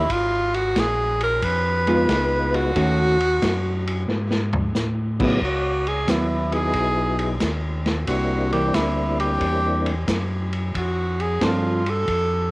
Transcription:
Already playing: E4
0.09 G#1 F4, kick, ride
0.54 F#4, ride
0.76 A#1 G#4, kick, snare, hi-hat pedal, ride
1.20 A#4, ride
1.42 F2 B4, kick, ride
1.87 G#3 B3 D#4 F4 B4, ride
2.09 C#2, kick, snare, hi-hat pedal, ride
2.54 F#4, ride
2.75 D#2 D#3 A3 C#4 F#4, kick, ride
3.20 ride
3.42 F#2, kick, snare, hi-hat pedal, ride
3.87 ride
4.08 G#2, snare
4.31 snare
4.53 floor tom
4.75 A2, snare, hi-hat pedal
5.19 C#3 F#3 B3 D#4 E4 G#4, kick, crash
5.41 C#2 F#4, kick
5.87 G#4, ride
6.07 D#2 F#3 B3 E4, kick, snare, hi-hat pedal, ride
6.51 F#3 B3 D#4 E4 G#4, ride
6.73 B1, kick, ride
7.19 ride
7.40 D#2, kick, snare, hi-hat pedal, ride
7.86 snare, ride
8.07 C2 G3 A#3 C4 D4 E4 F#4, kick, ride
8.53 E3 A#3 D4 G4, ride
8.74 D2 E4, kick, snare, hi-hat pedal, ride
9.20 G4, ride
9.41 E2, kick, ride
9.86 ride
10.08 F#2, kick, snare, hi-hat pedal, ride
10.53 ride
10.74 F2 F#4, kick, ride
11.19 G#4, ride
11.41 G2 F3 C4 D4 F4 A4, kick, snare, hi-hat pedal, ride
11.86 A4, ride
12.08 F2, kick, ride

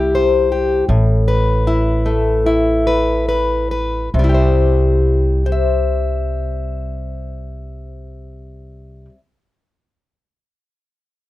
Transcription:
Already playing: C2 C3 G3 E4 G4
0.15 C5
0.52 G4
0.88 A1 A2
1.28 B4
1.67 E4
2.06 A3
2.46 E4
2.87 B4
3.29 B4
3.71 B4
4.14 C2 C3
4.19 G3
4.24 E4
4.29 G4
4.34 C5
5.46 C5
5.52 E5

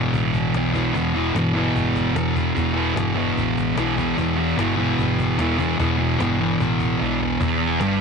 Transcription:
Already playing: E2 B2 E3
0.14 A1, cajon bass
0.34 cajon bass
0.54 B1 E2 B2 E3, cajon slap
0.74 B2 E3, cajon bass
0.94 E1 E2 B2 E3, cajon bass
1.14 B2 E3
1.34 G1 E2 B2 E3, cajon slap
1.54 B2 E3
1.76 G1, cajon bass
1.96 cajon bass
2.15 E1 E2 B2 E3, cajon slap
2.34 B2 E3, cajon bass
2.55 E1 E2 B2 E3, cajon bass
2.74 B2 E3
2.94 G1 E2 B2 E3, cajon slap
3.14 B2 E3
3.37 A1, cajon bass
3.58 cajon bass
3.75 B1 E2 B2 E3, cajon slap
3.97 B2 E3, cajon bass
4.17 E1 E2 B2 E3, cajon bass
4.37 B2 E3
4.57 G1 E2 B2 E3, cajon slap
4.77 B2 E3
4.99 G1, cajon bass
5.19 cajon bass
5.38 E1 E2 B2 E3, cajon slap
5.58 B2 E3, cajon bass
5.78 E1 E2 B2 E3, cajon bass
5.98 B2 E3
6.19 G1 E2 B2 E3, cajon slap
6.39 B2 E3
6.60 A1, cajon bass
6.80 cajon bass
7.00 B1 E2 B2 E3
7.21 B2 E3
7.41 E1 E2, cajon bass
7.81 G1 G2, cajon slap

